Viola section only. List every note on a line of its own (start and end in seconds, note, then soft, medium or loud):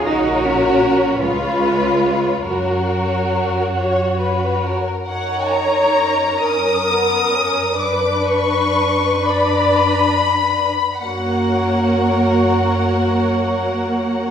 0.03 1.17 F#4 medium
1.22 2.47 F4 soft
2.48 4.82 F#4 soft
5.08 6.41 C#5 soft
6.45 7.76 A#4 soft
7.80 9.26 B4 soft
9.26 10.11 D5 soft
11.01 14.31 A#3 soft
11.01 14.31 F#4 soft